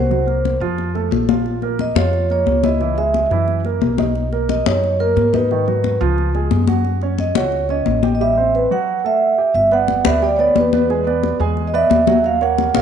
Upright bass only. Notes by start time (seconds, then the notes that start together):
Already playing: C2
0.60 F2
1.11 A#1
1.95 F2
2.46 C#2
3.30 F#2
3.81 B1
4.66 F#2
5.16 G#2
6.01 C#2
6.51 F#2
7.35 C#2
7.86 A1
9.54 G1
10.05 D2
10.56 E2
11.40 E2
11.90 D#2
12.74 A#1